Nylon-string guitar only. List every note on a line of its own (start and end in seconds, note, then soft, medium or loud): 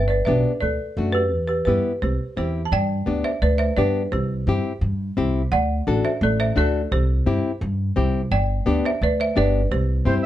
0.27 0.52 B3 medium
0.27 0.52 D4 medium
0.27 0.52 G4 medium
0.98 1.22 A3 medium
0.98 1.22 D4 medium
0.98 1.22 F#4 medium
1.67 1.92 B3 medium
1.67 1.92 E4 medium
1.67 1.92 G4 medium
2.37 2.61 C4 medium
2.37 2.61 E4 medium
2.37 2.62 G4 medium
3.06 3.31 B3 medium
3.06 3.31 D4 medium
3.06 3.31 G4 medium
3.77 4.02 B3 medium
3.77 4.02 D4 medium
3.77 4.02 G4 medium
4.48 4.72 C4 medium
4.48 4.72 E4 medium
4.48 4.72 G4 medium
5.17 5.41 C4 loud
5.17 5.42 E4 medium
5.17 5.42 G4 loud
5.87 6.11 D4 medium
5.87 6.12 F#4 medium
5.87 6.12 A4 medium
6.56 6.81 D4 medium
6.56 6.81 F#4 medium
6.56 6.81 A4 medium
7.26 7.51 C4 medium
7.26 7.51 E4 medium
7.26 7.51 G4 medium
7.96 8.21 C4 medium
7.96 8.21 E4 medium
7.96 8.21 G4 loud
8.66 8.91 B3 medium
8.66 8.91 D4 medium
8.66 8.91 G4 medium
9.36 9.61 B3 medium
9.36 9.61 D4 medium
9.36 9.61 G4 medium
10.05 10.26 C4 medium
10.05 10.26 E4 medium
10.05 10.26 G4 medium